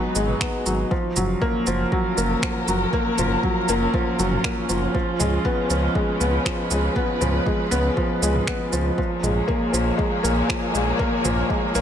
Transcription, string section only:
0.00 0.91 G#3 medium
0.00 1.82 D#4 medium
0.00 0.91 F#4 medium
0.00 0.92 B4 medium
1.24 9.83 C#4 medium
1.45 10.45 F4 medium
1.75 4.94 A#4 medium
4.95 8.98 C#3 medium
5.53 8.98 B4 medium
8.97 11.81 A#2 medium
9.09 11.81 G#4 medium
9.23 11.81 A#3 medium
9.32 11.81 C#5 medium

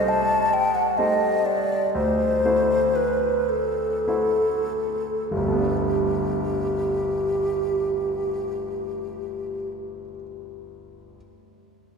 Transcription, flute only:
0.08 0.55 A5 medium
0.53 0.76 G5 medium
0.75 0.99 F#5 medium
0.97 1.47 D#5 medium
1.46 1.93 D5 medium
1.94 2.97 C5 medium
2.96 3.51 B4 medium
3.49 5.30 A4 medium
5.31 9.70 G4 medium

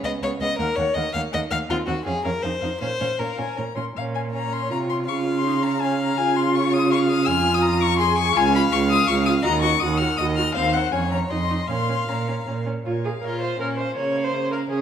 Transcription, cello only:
0.04 0.12 C#2 medium
0.22 0.30 C#2 medium
0.40 0.48 C#2 medium
0.59 0.66 D#2 medium
0.77 0.85 D#2 medium
0.96 1.03 D#2 medium
1.15 1.22 D#2 medium
1.34 1.41 D#2 medium
1.51 1.59 D#2 medium
1.70 1.77 D#2 medium
1.88 1.96 D#2 medium
2.06 2.14 F2 medium
2.25 2.33 F2 medium
2.44 2.51 F2 medium
2.62 2.70 F2 soft
2.81 2.89 A#2 medium
3.01 3.08 A#2 medium
3.19 3.27 A#2 medium
3.39 3.46 A#2 soft
3.58 3.65 A#2 medium
3.76 3.84 A#2 soft
3.96 4.72 A#2 soft
4.70 5.09 C3 soft
5.08 6.18 C#3 medium
6.19 7.28 C#3 medium
7.27 8.36 F2 medium
8.36 8.68 C#2 medium
8.72 9.04 C#2 medium
9.09 9.41 C#2 medium
9.45 9.78 D#2 medium
9.83 10.15 D#2 medium
10.19 10.52 D#2 medium
10.56 10.89 D#2 medium
10.93 11.26 F2 medium
11.31 11.65 F2 medium
11.69 12.03 A#2 medium
12.09 12.42 A#2 medium
12.48 12.81 A#2 medium
12.86 13.19 A#2 soft
13.23 13.55 A#2 soft
13.60 13.92 A#2 soft
13.97 14.29 C#3 soft
14.33 14.65 C#3 soft
14.70 14.81 C#3 soft

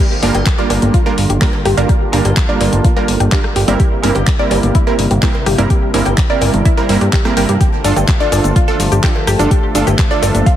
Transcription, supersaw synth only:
0.23 0.30 G3 medium
0.23 0.30 A#3 medium
0.23 0.30 D4 medium
0.23 0.30 F4 medium
0.23 0.30 A#4 loud
0.58 1.03 G3 medium
0.58 1.03 A#3 medium
0.58 1.03 D4 medium
0.58 1.03 F4 medium
0.58 1.03 A#4 medium
1.06 1.13 G3 medium
1.06 1.13 A#3 medium
1.06 1.13 D4 medium
1.06 1.13 F4 medium
1.06 1.13 A#4 loud
1.42 1.49 G3 loud
1.42 1.49 A#3 medium
1.42 1.49 D4 medium
1.42 1.49 F4 medium
1.42 1.49 A#4 loud
1.77 2.10 G3 medium
1.77 2.10 A#3 medium
1.77 2.10 D4 medium
1.77 2.10 F4 medium
1.77 2.10 A#4 medium
2.13 2.20 G3 medium
2.13 2.20 A#3 medium
2.13 2.20 D4 medium
2.13 2.20 F4 medium
2.13 2.20 A#4 loud
2.49 2.94 G3 medium
2.49 2.94 A#3 medium
2.49 2.94 D4 medium
2.49 2.94 F4 medium
2.49 2.94 A#4 medium
2.96 3.04 G3 medium
2.96 3.04 A#3 medium
2.96 3.04 D4 medium
2.96 3.04 F4 medium
2.96 3.04 A#4 medium
3.32 3.39 G3 loud
3.32 3.39 A#3 medium
3.32 3.39 D4 medium
3.32 3.39 F4 medium
3.32 3.39 A#4 loud
3.68 4.01 G3 medium
3.68 4.01 A#3 medium
3.68 4.01 C4 medium
3.68 4.01 E4 medium
3.68 4.01 A#4 medium
4.03 4.11 G3 medium
4.03 4.11 A#3 medium
4.03 4.11 C4 medium
4.03 4.11 E4 medium
4.03 4.11 A#4 loud
4.39 4.84 G3 medium
4.39 4.84 A#3 medium
4.39 4.84 C4 medium
4.39 4.84 E4 medium
4.39 4.84 A#4 medium
4.87 4.94 G3 medium
4.87 4.94 A#3 medium
4.87 4.94 C4 medium
4.87 4.94 E4 medium
4.87 4.94 A#4 loud
5.23 5.30 G3 loud
5.23 5.30 A#3 medium
5.23 5.30 C4 medium
5.23 5.30 E4 medium
5.23 5.30 A#4 loud
5.58 5.91 G3 medium
5.58 5.91 A#3 medium
5.58 5.91 C4 medium
5.58 5.91 E4 medium
5.58 5.91 A#4 medium
5.94 6.01 G3 medium
5.94 6.01 A#3 medium
5.94 6.01 C4 medium
5.94 6.01 E4 medium
5.94 6.01 A#4 loud
6.30 6.75 G3 medium
6.30 6.75 A#3 medium
6.30 6.75 C4 medium
6.30 6.75 E4 medium
6.30 6.75 A#4 medium
6.77 6.84 G3 medium
6.77 6.84 A#3 medium
6.77 6.84 C4 medium
6.77 6.84 E4 medium
6.77 6.84 A#4 medium
6.89 6.96 G3 medium
6.89 6.96 A#3 medium
6.89 6.96 C4 medium
6.89 6.96 E4 medium
6.89 6.96 A#4 medium
7.25 7.32 G3 medium
7.25 7.32 A#3 medium
7.25 7.32 C4 medium
7.25 7.32 E4 medium
7.25 7.32 A#4 loud
7.37 7.44 G3 loud
7.37 7.44 A#3 medium
7.37 7.44 C4 medium
7.37 7.44 E4 medium
7.37 7.44 A#4 loud
7.84 7.92 D4 medium
7.84 7.92 F4 medium
7.84 7.92 A4 loud
8.20 8.65 D4 medium
8.20 8.65 F4 medium
8.20 8.65 A4 medium
8.68 8.75 D4 medium
8.68 8.75 F4 medium
8.68 8.75 A4 medium
9.03 9.11 D4 loud
9.03 9.11 F4 medium
9.03 9.11 A4 loud
9.39 9.72 D4 medium
9.39 9.72 F4 medium
9.39 9.72 A4 medium
9.75 9.82 D4 medium
9.75 9.82 F4 medium
9.75 9.82 A4 loud
10.11 10.55 D4 medium
10.11 10.55 F4 medium
10.11 10.56 A4 medium

